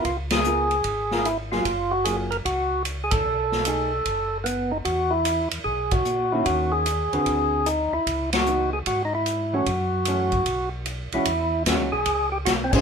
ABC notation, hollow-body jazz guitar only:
X:1
M:4/4
L:1/8
Q:"Swing" 1/4=150
K:E
V:1 name="Hollow-body jazz guitar"
z2 [B,^E^A] z2 [B,EA] z [F,^A,EG] | z2 [F,^A,^EG] z4 z | z2 [A,DG] z4 z | z6 z [D,^A,CF]- |
[D,^A,CF]2 z [=D,^B,F=B]3 z2 | z2 [E,B,D] z4 [E,A,C] | z2 [E,A,C] z4 [E,G,CF] | z2 [E,G,CF] z4 [D,C=G^B] |]